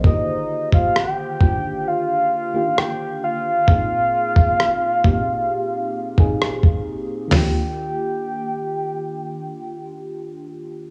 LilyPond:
<<
  \new Staff \with { instrumentName = "Soft synth lead" } { \time 4/4 \key ees \major \tempo 4 = 66 ees''8. f''16 g''4 f''4 g''8 f''8~ | f''2.~ f''8 r8 | g''1 | }
  \new Staff \with { instrumentName = "FM electric piano" } { \time 4/4 \key ees \major << { <aes' c''>16 r2. r8. | r1 | r1 | } \\ { <d ees bes f' g'>4 r8 <ees bes d' f' g'>8. r8 <ees bes d' f' g'>8. r8 | <bes, bes c' ees' aes'>4 r8 <bes, bes c' ees' g'>8. r8 <bes, bes c' ees' aes'>8. r8 | <ees bes d' f' g'>1 | } >> }
  \new DrumStaff \with { instrumentName = "Drums" } \drummode { \time 4/4 bd8. bd16 ss8 bd8 r4 ss4 | bd8. bd16 ss8 bd8 r8. bd16 ss16 bd8. | <hho sn tomfh>4 r4 r4 r4 | }
>>